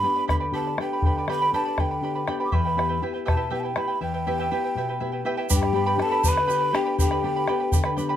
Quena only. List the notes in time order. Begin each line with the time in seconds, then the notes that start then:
Already playing: B5
0.30 B5
0.55 A5
0.81 G5
1.31 B5
1.54 A5
1.80 G5
2.46 D6
2.54 B5
3.28 A5
3.54 G5
3.60 A5
3.66 G5
3.77 B5
4.02 G5
5.55 G5
6.02 A5
6.28 B5
6.75 G5
7.01 G5